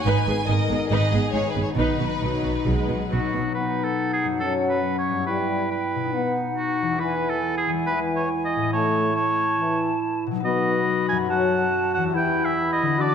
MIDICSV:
0, 0, Header, 1, 11, 480
1, 0, Start_track
1, 0, Tempo, 428266
1, 55, Time_signature, 4, 2, 24, 8
1, 1496, Tempo, 439883
1, 5336, Tempo, 428878
1, 14619, End_track
2, 0, Start_track
2, 0, Title_t, "Flute"
2, 0, Program_c, 0, 73
2, 3914, Note_on_c, 0, 78, 37
2, 5832, Note_on_c, 0, 79, 37
2, 5849, Note_off_c, 0, 78, 0
2, 6775, Note_on_c, 0, 78, 40
2, 6792, Note_off_c, 0, 79, 0
2, 7743, Note_off_c, 0, 78, 0
2, 7764, Note_on_c, 0, 80, 39
2, 9644, Note_off_c, 0, 80, 0
2, 9676, Note_on_c, 0, 81, 44
2, 11352, Note_off_c, 0, 81, 0
2, 11599, Note_on_c, 0, 83, 51
2, 12552, Note_on_c, 0, 81, 53
2, 12569, Note_off_c, 0, 83, 0
2, 13505, Note_off_c, 0, 81, 0
2, 13521, Note_on_c, 0, 83, 55
2, 14461, Note_on_c, 0, 86, 53
2, 14477, Note_off_c, 0, 83, 0
2, 14619, Note_off_c, 0, 86, 0
2, 14619, End_track
3, 0, Start_track
3, 0, Title_t, "Violin section"
3, 0, Program_c, 1, 48
3, 45, Note_on_c, 1, 80, 65
3, 515, Note_off_c, 1, 80, 0
3, 530, Note_on_c, 1, 75, 61
3, 989, Note_off_c, 1, 75, 0
3, 1002, Note_on_c, 1, 75, 62
3, 1482, Note_off_c, 1, 75, 0
3, 1483, Note_on_c, 1, 73, 51
3, 1646, Note_off_c, 1, 73, 0
3, 1666, Note_on_c, 1, 71, 46
3, 1820, Note_on_c, 1, 73, 42
3, 1821, Note_off_c, 1, 71, 0
3, 1884, Note_off_c, 1, 73, 0
3, 1970, Note_on_c, 1, 71, 49
3, 3640, Note_off_c, 1, 71, 0
3, 14619, End_track
4, 0, Start_track
4, 0, Title_t, "Oboe"
4, 0, Program_c, 2, 68
4, 3444, Note_on_c, 2, 66, 43
4, 3887, Note_off_c, 2, 66, 0
4, 3911, Note_on_c, 2, 71, 49
4, 4232, Note_on_c, 2, 69, 50
4, 4248, Note_off_c, 2, 71, 0
4, 4542, Note_off_c, 2, 69, 0
4, 4548, Note_on_c, 2, 68, 47
4, 4690, Note_off_c, 2, 68, 0
4, 4842, Note_on_c, 2, 69, 49
4, 4989, Note_off_c, 2, 69, 0
4, 5159, Note_on_c, 2, 71, 50
4, 5476, Note_off_c, 2, 71, 0
4, 5483, Note_on_c, 2, 73, 53
4, 5793, Note_off_c, 2, 73, 0
4, 5800, Note_on_c, 2, 71, 52
4, 6280, Note_off_c, 2, 71, 0
4, 6296, Note_on_c, 2, 71, 49
4, 7006, Note_off_c, 2, 71, 0
4, 7245, Note_on_c, 2, 66, 51
4, 7734, Note_on_c, 2, 71, 51
4, 7750, Note_off_c, 2, 66, 0
4, 8071, Note_on_c, 2, 69, 50
4, 8088, Note_off_c, 2, 71, 0
4, 8376, Note_off_c, 2, 69, 0
4, 8383, Note_on_c, 2, 68, 51
4, 8528, Note_off_c, 2, 68, 0
4, 8710, Note_on_c, 2, 71, 63
4, 8855, Note_off_c, 2, 71, 0
4, 9042, Note_on_c, 2, 73, 46
4, 9184, Note_off_c, 2, 73, 0
4, 9361, Note_on_c, 2, 75, 58
4, 9670, Note_off_c, 2, 75, 0
4, 9677, Note_on_c, 2, 73, 62
4, 10143, Note_off_c, 2, 73, 0
4, 10152, Note_on_c, 2, 73, 58
4, 10855, Note_off_c, 2, 73, 0
4, 11595, Note_on_c, 2, 75, 68
4, 12262, Note_off_c, 2, 75, 0
4, 12313, Note_on_c, 2, 80, 68
4, 12417, Note_off_c, 2, 80, 0
4, 12558, Note_on_c, 2, 78, 70
4, 13254, Note_off_c, 2, 78, 0
4, 13272, Note_on_c, 2, 78, 74
4, 13377, Note_off_c, 2, 78, 0
4, 13520, Note_on_c, 2, 79, 74
4, 13837, Note_on_c, 2, 76, 76
4, 13854, Note_off_c, 2, 79, 0
4, 14142, Note_off_c, 2, 76, 0
4, 14149, Note_on_c, 2, 75, 76
4, 14468, Note_on_c, 2, 74, 77
4, 14484, Note_off_c, 2, 75, 0
4, 14619, Note_off_c, 2, 74, 0
4, 14619, End_track
5, 0, Start_track
5, 0, Title_t, "Violin section"
5, 0, Program_c, 3, 48
5, 81, Note_on_c, 3, 71, 45
5, 529, Note_on_c, 3, 70, 49
5, 543, Note_off_c, 3, 71, 0
5, 994, Note_on_c, 3, 68, 51
5, 999, Note_off_c, 3, 70, 0
5, 1970, Note_off_c, 3, 68, 0
5, 1982, Note_on_c, 3, 63, 43
5, 3646, Note_off_c, 3, 63, 0
5, 14619, End_track
6, 0, Start_track
6, 0, Title_t, "Clarinet"
6, 0, Program_c, 4, 71
6, 3905, Note_on_c, 4, 63, 38
6, 4866, Note_on_c, 4, 61, 36
6, 4883, Note_off_c, 4, 63, 0
6, 5799, Note_off_c, 4, 61, 0
6, 5805, Note_on_c, 4, 64, 34
6, 6757, Note_on_c, 4, 63, 36
6, 6774, Note_off_c, 4, 64, 0
6, 7716, Note_off_c, 4, 63, 0
6, 7722, Note_on_c, 4, 64, 41
6, 11404, Note_off_c, 4, 64, 0
6, 11594, Note_on_c, 4, 66, 49
6, 12500, Note_off_c, 4, 66, 0
6, 12541, Note_on_c, 4, 66, 50
6, 13493, Note_on_c, 4, 64, 57
6, 13510, Note_off_c, 4, 66, 0
6, 14437, Note_on_c, 4, 66, 56
6, 14454, Note_off_c, 4, 64, 0
6, 14619, Note_off_c, 4, 66, 0
6, 14619, End_track
7, 0, Start_track
7, 0, Title_t, "Viola section"
7, 0, Program_c, 5, 48
7, 72, Note_on_c, 5, 63, 53
7, 77, Note_on_c, 5, 71, 54
7, 285, Note_off_c, 5, 63, 0
7, 287, Note_off_c, 5, 71, 0
7, 312, Note_on_c, 5, 68, 40
7, 316, Note_on_c, 5, 59, 33
7, 402, Note_off_c, 5, 68, 0
7, 406, Note_off_c, 5, 59, 0
7, 555, Note_on_c, 5, 63, 34
7, 559, Note_on_c, 5, 56, 36
7, 645, Note_off_c, 5, 63, 0
7, 648, Note_off_c, 5, 56, 0
7, 781, Note_on_c, 5, 59, 37
7, 784, Note_on_c, 5, 68, 37
7, 870, Note_off_c, 5, 59, 0
7, 874, Note_off_c, 5, 68, 0
7, 1021, Note_on_c, 5, 63, 53
7, 1028, Note_on_c, 5, 71, 53
7, 1240, Note_off_c, 5, 63, 0
7, 1244, Note_off_c, 5, 71, 0
7, 1274, Note_on_c, 5, 68, 37
7, 1280, Note_on_c, 5, 59, 40
7, 1363, Note_off_c, 5, 68, 0
7, 1370, Note_off_c, 5, 59, 0
7, 1503, Note_on_c, 5, 56, 37
7, 1503, Note_on_c, 5, 63, 31
7, 1590, Note_off_c, 5, 56, 0
7, 1590, Note_off_c, 5, 63, 0
7, 1738, Note_on_c, 5, 59, 32
7, 1741, Note_on_c, 5, 68, 36
7, 1825, Note_off_c, 5, 59, 0
7, 1828, Note_off_c, 5, 68, 0
7, 1985, Note_on_c, 5, 63, 43
7, 1985, Note_on_c, 5, 71, 41
7, 2208, Note_off_c, 5, 63, 0
7, 2208, Note_off_c, 5, 71, 0
7, 2231, Note_on_c, 5, 59, 28
7, 2233, Note_on_c, 5, 66, 26
7, 2319, Note_off_c, 5, 59, 0
7, 2320, Note_off_c, 5, 66, 0
7, 2471, Note_on_c, 5, 54, 39
7, 2920, Note_off_c, 5, 54, 0
7, 2952, Note_on_c, 5, 56, 42
7, 3426, Note_off_c, 5, 56, 0
7, 3429, Note_on_c, 5, 54, 32
7, 3903, Note_off_c, 5, 54, 0
7, 14619, End_track
8, 0, Start_track
8, 0, Title_t, "Harp"
8, 0, Program_c, 6, 46
8, 0, Note_on_c, 6, 63, 34
8, 54, Note_on_c, 6, 44, 47
8, 285, Note_on_c, 6, 59, 34
8, 505, Note_off_c, 6, 63, 0
8, 519, Note_on_c, 6, 63, 36
8, 745, Note_off_c, 6, 59, 0
8, 758, Note_on_c, 6, 59, 34
8, 1007, Note_on_c, 6, 51, 34
8, 1233, Note_off_c, 6, 59, 0
8, 1247, Note_on_c, 6, 59, 33
8, 1467, Note_off_c, 6, 63, 0
8, 1480, Note_on_c, 6, 63, 32
8, 1712, Note_off_c, 6, 59, 0
8, 1725, Note_on_c, 6, 59, 28
8, 1973, Note_on_c, 6, 47, 37
8, 1996, Note_off_c, 6, 44, 0
8, 1996, Note_off_c, 6, 51, 0
8, 2203, Note_off_c, 6, 59, 0
8, 2216, Note_on_c, 6, 59, 27
8, 2440, Note_off_c, 6, 63, 0
8, 2453, Note_on_c, 6, 63, 27
8, 2687, Note_off_c, 6, 59, 0
8, 2700, Note_on_c, 6, 59, 26
8, 2947, Note_on_c, 6, 54, 27
8, 3177, Note_off_c, 6, 59, 0
8, 3190, Note_on_c, 6, 59, 25
8, 3418, Note_off_c, 6, 63, 0
8, 3431, Note_on_c, 6, 63, 27
8, 3666, Note_off_c, 6, 59, 0
8, 3679, Note_on_c, 6, 59, 27
8, 3711, Note_off_c, 6, 47, 0
8, 3724, Note_on_c, 6, 47, 35
8, 3762, Note_off_c, 6, 59, 0
8, 3775, Note_on_c, 6, 59, 29
8, 3809, Note_off_c, 6, 63, 0
8, 3822, Note_on_c, 6, 63, 28
8, 3870, Note_on_c, 6, 66, 28
8, 4668, Note_on_c, 6, 42, 34
8, 4712, Note_on_c, 6, 61, 27
8, 4752, Note_off_c, 6, 66, 0
8, 4765, Note_on_c, 6, 66, 27
8, 4786, Note_off_c, 6, 47, 0
8, 4811, Note_off_c, 6, 59, 0
8, 4817, Note_on_c, 6, 69, 28
8, 4835, Note_off_c, 6, 63, 0
8, 5604, Note_on_c, 6, 43, 36
8, 5657, Note_on_c, 6, 59, 30
8, 5706, Note_on_c, 6, 64, 29
8, 5737, Note_off_c, 6, 42, 0
8, 5756, Note_on_c, 6, 67, 28
8, 5760, Note_off_c, 6, 61, 0
8, 5787, Note_off_c, 6, 66, 0
8, 5813, Note_off_c, 6, 69, 0
8, 5835, Note_off_c, 6, 54, 0
8, 6567, Note_on_c, 6, 47, 35
8, 6611, Note_off_c, 6, 59, 0
8, 6624, Note_on_c, 6, 59, 29
8, 6672, Note_on_c, 6, 63, 28
8, 6692, Note_off_c, 6, 43, 0
8, 6722, Note_on_c, 6, 66, 28
8, 6743, Note_off_c, 6, 64, 0
8, 6768, Note_off_c, 6, 67, 0
8, 7538, Note_on_c, 6, 40, 36
8, 7575, Note_off_c, 6, 59, 0
8, 7589, Note_on_c, 6, 59, 29
8, 7639, Note_on_c, 6, 64, 31
8, 7658, Note_off_c, 6, 47, 0
8, 7686, Note_on_c, 6, 68, 29
8, 7711, Note_off_c, 6, 63, 0
8, 7736, Note_off_c, 6, 66, 0
8, 8492, Note_off_c, 6, 40, 0
8, 8506, Note_on_c, 6, 40, 36
8, 8560, Note_on_c, 6, 56, 30
8, 8598, Note_off_c, 6, 64, 0
8, 8611, Note_on_c, 6, 64, 30
8, 8644, Note_off_c, 6, 68, 0
8, 8649, Note_off_c, 6, 59, 0
8, 8658, Note_on_c, 6, 68, 31
8, 9484, Note_on_c, 6, 45, 40
8, 9532, Note_on_c, 6, 57, 32
8, 9569, Note_off_c, 6, 64, 0
8, 9583, Note_on_c, 6, 64, 33
8, 9591, Note_off_c, 6, 40, 0
8, 9617, Note_off_c, 6, 56, 0
8, 9632, Note_on_c, 6, 73, 34
8, 9667, Note_off_c, 6, 68, 0
8, 11393, Note_on_c, 6, 47, 46
8, 11444, Note_on_c, 6, 54, 37
8, 11495, Note_on_c, 6, 63, 37
8, 11509, Note_off_c, 6, 45, 0
8, 11533, Note_off_c, 6, 57, 0
8, 11542, Note_on_c, 6, 71, 37
8, 11559, Note_off_c, 6, 64, 0
8, 11583, Note_off_c, 6, 73, 0
8, 12342, Note_on_c, 6, 42, 47
8, 12373, Note_off_c, 6, 54, 0
8, 12386, Note_on_c, 6, 54, 39
8, 12442, Note_on_c, 6, 61, 37
8, 12463, Note_off_c, 6, 47, 0
8, 12491, Note_on_c, 6, 69, 39
8, 12514, Note_off_c, 6, 63, 0
8, 12538, Note_off_c, 6, 71, 0
8, 13298, Note_on_c, 6, 40, 50
8, 13349, Note_on_c, 6, 59, 43
8, 13399, Note_on_c, 6, 64, 42
8, 13419, Note_off_c, 6, 42, 0
8, 13442, Note_off_c, 6, 54, 0
8, 13448, Note_on_c, 6, 67, 44
8, 13470, Note_off_c, 6, 61, 0
8, 13494, Note_off_c, 6, 69, 0
8, 14255, Note_on_c, 6, 50, 53
8, 14305, Note_on_c, 6, 62, 43
8, 14356, Note_on_c, 6, 66, 43
8, 14373, Note_off_c, 6, 40, 0
8, 14399, Note_off_c, 6, 59, 0
8, 14408, Note_on_c, 6, 69, 41
8, 14424, Note_off_c, 6, 64, 0
8, 14448, Note_off_c, 6, 67, 0
8, 14619, Note_off_c, 6, 50, 0
8, 14619, Note_off_c, 6, 62, 0
8, 14619, Note_off_c, 6, 66, 0
8, 14619, Note_off_c, 6, 69, 0
8, 14619, End_track
9, 0, Start_track
9, 0, Title_t, "French horn section"
9, 0, Program_c, 7, 60
9, 3931, Note_on_c, 7, 59, 43
9, 4318, Note_off_c, 7, 59, 0
9, 4868, Note_on_c, 7, 54, 42
9, 5260, Note_off_c, 7, 54, 0
9, 5815, Note_on_c, 7, 55, 42
9, 6217, Note_off_c, 7, 55, 0
9, 6779, Note_on_c, 7, 59, 44
9, 7182, Note_off_c, 7, 59, 0
9, 7756, Note_on_c, 7, 52, 45
9, 8152, Note_off_c, 7, 52, 0
9, 8715, Note_on_c, 7, 52, 47
9, 9115, Note_off_c, 7, 52, 0
9, 9684, Note_on_c, 7, 57, 48
9, 10077, Note_off_c, 7, 57, 0
9, 10637, Note_on_c, 7, 52, 51
9, 11031, Note_off_c, 7, 52, 0
9, 11593, Note_on_c, 7, 59, 55
9, 11987, Note_off_c, 7, 59, 0
9, 12546, Note_on_c, 7, 54, 59
9, 12942, Note_off_c, 7, 54, 0
9, 13504, Note_on_c, 7, 52, 63
9, 13901, Note_off_c, 7, 52, 0
9, 14436, Note_on_c, 7, 62, 60
9, 14619, Note_off_c, 7, 62, 0
9, 14619, End_track
10, 0, Start_track
10, 0, Title_t, "Cello section"
10, 0, Program_c, 8, 48
10, 55, Note_on_c, 8, 44, 52
10, 145, Note_off_c, 8, 44, 0
10, 293, Note_on_c, 8, 44, 39
10, 382, Note_off_c, 8, 44, 0
10, 525, Note_on_c, 8, 44, 35
10, 615, Note_off_c, 8, 44, 0
10, 761, Note_on_c, 8, 44, 34
10, 851, Note_off_c, 8, 44, 0
10, 1009, Note_on_c, 8, 44, 51
10, 1099, Note_off_c, 8, 44, 0
10, 1252, Note_on_c, 8, 44, 36
10, 1342, Note_off_c, 8, 44, 0
10, 1492, Note_on_c, 8, 44, 30
10, 1580, Note_off_c, 8, 44, 0
10, 1727, Note_on_c, 8, 44, 30
10, 1815, Note_off_c, 8, 44, 0
10, 1956, Note_on_c, 8, 47, 43
10, 2043, Note_off_c, 8, 47, 0
10, 2211, Note_on_c, 8, 47, 28
10, 2298, Note_off_c, 8, 47, 0
10, 2456, Note_on_c, 8, 47, 28
10, 2543, Note_off_c, 8, 47, 0
10, 2693, Note_on_c, 8, 47, 27
10, 2780, Note_off_c, 8, 47, 0
10, 2944, Note_on_c, 8, 47, 39
10, 3031, Note_off_c, 8, 47, 0
10, 3185, Note_on_c, 8, 47, 27
10, 3272, Note_off_c, 8, 47, 0
10, 3436, Note_on_c, 8, 47, 27
10, 3524, Note_off_c, 8, 47, 0
10, 3683, Note_on_c, 8, 47, 25
10, 3770, Note_off_c, 8, 47, 0
10, 14619, End_track
11, 0, Start_track
11, 0, Title_t, "Double bass section"
11, 0, Program_c, 10, 48
11, 72, Note_on_c, 10, 32, 49
11, 162, Note_off_c, 10, 32, 0
11, 304, Note_on_c, 10, 32, 38
11, 393, Note_off_c, 10, 32, 0
11, 546, Note_on_c, 10, 32, 36
11, 636, Note_off_c, 10, 32, 0
11, 785, Note_on_c, 10, 32, 36
11, 875, Note_off_c, 10, 32, 0
11, 1028, Note_on_c, 10, 32, 53
11, 1118, Note_off_c, 10, 32, 0
11, 1272, Note_on_c, 10, 32, 34
11, 1362, Note_off_c, 10, 32, 0
11, 1503, Note_on_c, 10, 32, 33
11, 1590, Note_off_c, 10, 32, 0
11, 1753, Note_on_c, 10, 32, 31
11, 1840, Note_off_c, 10, 32, 0
11, 1986, Note_on_c, 10, 35, 37
11, 2073, Note_off_c, 10, 35, 0
11, 2228, Note_on_c, 10, 35, 29
11, 2315, Note_off_c, 10, 35, 0
11, 2471, Note_on_c, 10, 35, 27
11, 2558, Note_off_c, 10, 35, 0
11, 2722, Note_on_c, 10, 35, 28
11, 2810, Note_off_c, 10, 35, 0
11, 2961, Note_on_c, 10, 35, 41
11, 3048, Note_off_c, 10, 35, 0
11, 3204, Note_on_c, 10, 35, 26
11, 3291, Note_off_c, 10, 35, 0
11, 3446, Note_on_c, 10, 35, 27
11, 3534, Note_off_c, 10, 35, 0
11, 3682, Note_on_c, 10, 35, 25
11, 3769, Note_off_c, 10, 35, 0
11, 14619, End_track
0, 0, End_of_file